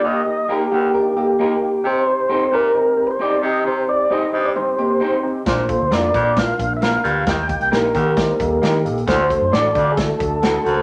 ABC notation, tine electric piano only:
X:1
M:4/4
L:1/8
Q:1/4=133
K:Cdor
V:1 name="Tine electric piano"
[B,EGB] [B,EGB] [B,EGB] [B,EGB] [B,EGB] [B,EGA] [B,EGB] [B,EGB] | [CEGc] [CEGc] [CEGA] [CEGc] [CEGc] [CEGc] [CEGB] [CEGe] | [CEGc] [CEGc] [CEGc] [CEGc] [CEGc] [CEGc] [CEGc] [CEGc] | [B,DFB] [B,DFA] [B,DFA] [B,DFB] [B,DFB] [B,DFB] [B,DFB] [B,DFB] |
[B,EGB] [B,EGB] [B,EGB] [B,EGB] [B,EGc] [B,EGA] [B,EGB] [B,EGA] | [A,D^FA] [A,DFA] [A,DFA] [A,DFA] [A,DFA] [A,DFA] [A,DFA] [A,DFc] |]